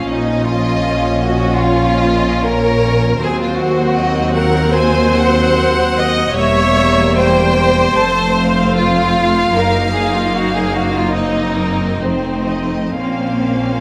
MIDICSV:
0, 0, Header, 1, 6, 480
1, 0, Start_track
1, 0, Key_signature, -5, "minor"
1, 0, Tempo, 760456
1, 47, Time_signature, 4, 2, 24, 8
1, 1008, Tempo, 827586
1, 1488, Tempo, 772201
1, 2928, Tempo, 807537
1, 4848, Tempo, 784314
1, 6288, Tempo, 843882
1, 7248, Tempo, 974026
1, 8131, End_track
2, 0, Start_track
2, 0, Title_t, "Violin section"
2, 0, Program_c, 0, 48
2, 39, Note_on_c, 0, 75, 72
2, 1000, Note_on_c, 0, 73, 61
2, 1004, Note_off_c, 0, 75, 0
2, 1232, Note_on_c, 0, 75, 63
2, 1242, Note_off_c, 0, 73, 0
2, 1470, Note_on_c, 0, 73, 68
2, 1481, Note_off_c, 0, 75, 0
2, 1958, Note_off_c, 0, 73, 0
2, 1958, Note_on_c, 0, 72, 69
2, 2428, Note_off_c, 0, 72, 0
2, 2440, Note_on_c, 0, 75, 72
2, 2682, Note_off_c, 0, 75, 0
2, 2693, Note_on_c, 0, 78, 71
2, 2927, Note_on_c, 0, 80, 71
2, 2928, Note_off_c, 0, 78, 0
2, 3166, Note_off_c, 0, 80, 0
2, 3171, Note_on_c, 0, 78, 80
2, 3880, Note_on_c, 0, 76, 81
2, 3883, Note_off_c, 0, 78, 0
2, 4351, Note_off_c, 0, 76, 0
2, 4366, Note_on_c, 0, 79, 75
2, 4848, Note_on_c, 0, 81, 71
2, 4849, Note_off_c, 0, 79, 0
2, 5092, Note_off_c, 0, 81, 0
2, 5101, Note_on_c, 0, 77, 78
2, 6754, Note_on_c, 0, 75, 54
2, 6761, Note_off_c, 0, 77, 0
2, 6991, Note_off_c, 0, 75, 0
2, 6992, Note_on_c, 0, 70, 55
2, 7244, Note_off_c, 0, 70, 0
2, 7244, Note_on_c, 0, 72, 53
2, 7478, Note_off_c, 0, 72, 0
2, 7478, Note_on_c, 0, 75, 54
2, 7718, Note_on_c, 0, 77, 55
2, 7722, Note_off_c, 0, 75, 0
2, 8131, Note_off_c, 0, 77, 0
2, 8131, End_track
3, 0, Start_track
3, 0, Title_t, "Violin section"
3, 0, Program_c, 1, 48
3, 48, Note_on_c, 1, 63, 70
3, 283, Note_off_c, 1, 63, 0
3, 284, Note_on_c, 1, 65, 76
3, 762, Note_on_c, 1, 66, 82
3, 765, Note_off_c, 1, 65, 0
3, 1007, Note_off_c, 1, 66, 0
3, 1009, Note_on_c, 1, 65, 92
3, 1489, Note_off_c, 1, 65, 0
3, 1496, Note_on_c, 1, 70, 97
3, 1971, Note_off_c, 1, 70, 0
3, 1981, Note_on_c, 1, 68, 90
3, 2093, Note_off_c, 1, 68, 0
3, 2099, Note_on_c, 1, 65, 74
3, 2205, Note_on_c, 1, 66, 82
3, 2209, Note_off_c, 1, 65, 0
3, 2680, Note_on_c, 1, 70, 91
3, 2683, Note_off_c, 1, 66, 0
3, 2927, Note_off_c, 1, 70, 0
3, 2932, Note_on_c, 1, 72, 97
3, 3641, Note_on_c, 1, 75, 91
3, 3647, Note_off_c, 1, 72, 0
3, 3875, Note_on_c, 1, 73, 102
3, 3879, Note_off_c, 1, 75, 0
3, 4358, Note_off_c, 1, 73, 0
3, 4365, Note_on_c, 1, 72, 106
3, 5312, Note_off_c, 1, 72, 0
3, 5329, Note_on_c, 1, 65, 97
3, 5795, Note_off_c, 1, 65, 0
3, 5803, Note_on_c, 1, 70, 90
3, 6040, Note_on_c, 1, 68, 76
3, 6044, Note_off_c, 1, 70, 0
3, 6161, Note_off_c, 1, 68, 0
3, 6164, Note_on_c, 1, 65, 77
3, 6285, Note_on_c, 1, 66, 86
3, 6286, Note_off_c, 1, 65, 0
3, 6400, Note_off_c, 1, 66, 0
3, 6403, Note_on_c, 1, 68, 74
3, 6517, Note_off_c, 1, 68, 0
3, 6517, Note_on_c, 1, 66, 76
3, 6636, Note_off_c, 1, 66, 0
3, 6638, Note_on_c, 1, 65, 77
3, 6745, Note_on_c, 1, 63, 88
3, 6757, Note_off_c, 1, 65, 0
3, 7241, Note_off_c, 1, 63, 0
3, 7242, Note_on_c, 1, 60, 74
3, 7715, Note_off_c, 1, 60, 0
3, 7721, Note_on_c, 1, 60, 69
3, 8131, Note_off_c, 1, 60, 0
3, 8131, End_track
4, 0, Start_track
4, 0, Title_t, "Viola section"
4, 0, Program_c, 2, 48
4, 0, Note_on_c, 2, 53, 54
4, 48, Note_on_c, 2, 61, 68
4, 1943, Note_off_c, 2, 61, 0
4, 1968, Note_off_c, 2, 53, 0
4, 1970, Note_on_c, 2, 54, 70
4, 1971, Note_on_c, 2, 60, 75
4, 3858, Note_off_c, 2, 54, 0
4, 3859, Note_off_c, 2, 60, 0
4, 3885, Note_on_c, 2, 55, 78
4, 3885, Note_on_c, 2, 58, 77
4, 4829, Note_off_c, 2, 55, 0
4, 4845, Note_on_c, 2, 57, 72
4, 4846, Note_on_c, 2, 60, 66
4, 4848, Note_off_c, 2, 58, 0
4, 5804, Note_off_c, 2, 57, 0
4, 5805, Note_off_c, 2, 60, 0
4, 5805, Note_on_c, 2, 63, 73
4, 5806, Note_on_c, 2, 58, 71
4, 6738, Note_off_c, 2, 63, 0
4, 6756, Note_on_c, 2, 60, 56
4, 7224, Note_off_c, 2, 58, 0
4, 7245, Note_on_c, 2, 63, 53
4, 7247, Note_off_c, 2, 60, 0
4, 7247, Note_on_c, 2, 57, 52
4, 7713, Note_off_c, 2, 57, 0
4, 7717, Note_on_c, 2, 61, 55
4, 7719, Note_on_c, 2, 58, 54
4, 7722, Note_off_c, 2, 63, 0
4, 8131, Note_off_c, 2, 58, 0
4, 8131, Note_off_c, 2, 61, 0
4, 8131, End_track
5, 0, Start_track
5, 0, Title_t, "Cello section"
5, 0, Program_c, 3, 48
5, 52, Note_on_c, 3, 46, 59
5, 1945, Note_off_c, 3, 46, 0
5, 1970, Note_on_c, 3, 39, 63
5, 3882, Note_off_c, 3, 39, 0
5, 3887, Note_on_c, 3, 40, 70
5, 4830, Note_off_c, 3, 40, 0
5, 4848, Note_on_c, 3, 41, 69
5, 5787, Note_off_c, 3, 41, 0
5, 5810, Note_on_c, 3, 42, 67
5, 7226, Note_off_c, 3, 42, 0
5, 7246, Note_on_c, 3, 41, 57
5, 7721, Note_on_c, 3, 46, 50
5, 7722, Note_off_c, 3, 41, 0
5, 8131, Note_off_c, 3, 46, 0
5, 8131, End_track
6, 0, Start_track
6, 0, Title_t, "Double bass section"
6, 0, Program_c, 4, 48
6, 45, Note_on_c, 4, 34, 61
6, 1942, Note_off_c, 4, 34, 0
6, 1974, Note_on_c, 4, 39, 66
6, 3884, Note_off_c, 4, 39, 0
6, 3884, Note_on_c, 4, 28, 69
6, 4829, Note_off_c, 4, 28, 0
6, 4850, Note_on_c, 4, 29, 74
6, 5788, Note_off_c, 4, 29, 0
6, 5808, Note_on_c, 4, 30, 67
6, 7225, Note_off_c, 4, 30, 0
6, 7249, Note_on_c, 4, 29, 56
6, 7718, Note_on_c, 4, 34, 49
6, 7724, Note_off_c, 4, 29, 0
6, 8131, Note_off_c, 4, 34, 0
6, 8131, End_track
0, 0, End_of_file